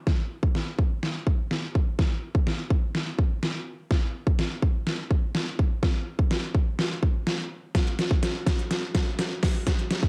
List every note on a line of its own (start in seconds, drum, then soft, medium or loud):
0.07 kick loud
0.07 snare soft
0.43 kick medium
0.55 snare medium
0.79 kick medium
1.03 snare medium
1.27 kick medium
1.51 snare medium
1.75 kick medium
1.99 kick loud
1.99 snare medium
2.35 kick medium
2.47 snare medium
2.70 kick loud
2.95 snare medium
3.19 kick medium
3.43 snare medium
3.91 kick loud
3.91 snare medium
4.27 kick loud
4.39 snare medium
4.62 kick loud
4.87 snare medium
5.11 kick medium
5.35 snare medium
5.59 kick medium
5.83 kick loud
5.83 snare medium
6.19 kick loud
6.31 snare medium
6.55 kick loud
6.79 snare medium
7.03 kick medium
7.27 snare medium
7.75 kick loud
7.75 snare medium
7.75 closed hi-hat medium
7.87 closed hi-hat soft
7.99 snare medium
7.99 closed hi-hat medium
8.11 kick loud
8.23 snare medium
8.23 closed hi-hat loud
8.47 kick loud
8.47 snare medium
8.47 closed hi-hat medium
8.59 closed hi-hat medium
8.71 snare medium
8.71 closed hi-hat medium
8.95 kick loud
8.95 snare medium
8.95 closed hi-hat medium
9.19 snare medium
9.19 closed hi-hat loud
9.43 kick medium
9.43 snare medium
9.43 open hi-hat medium
9.67 kick loud
9.67 snare medium
9.67 closed hi-hat medium
9.79 closed hi-hat soft
9.91 snare loud
9.91 closed hi-hat medium
10.03 kick loud